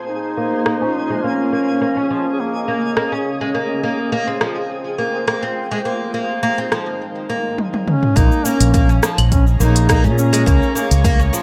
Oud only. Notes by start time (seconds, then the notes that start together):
0.37 A#3
0.66 A#3
0.82 C#4
1.10 G#3
1.24 A#3
1.53 A#3
1.81 A#3
1.97 C#4
2.10 F3
2.68 A#3
2.97 A#3
3.12 C#4
3.41 G#3
3.54 A#3
3.83 A#3
4.12 A#3
4.27 C4
4.41 F3
4.98 A#3
5.28 A#3
5.43 C4
5.71 G#3
5.85 A#3
6.14 A#3
6.43 A#3
6.58 C4
6.72 F3
7.30 A#3
8.16 A#3
8.45 A#3
8.74 A#3
8.89 C#4
9.03 F3
9.60 A#3
9.89 A#3
10.04 C#4
10.33 G#3
10.46 A#3
10.75 A#3
11.04 A#3
11.19 C#4
11.33 F3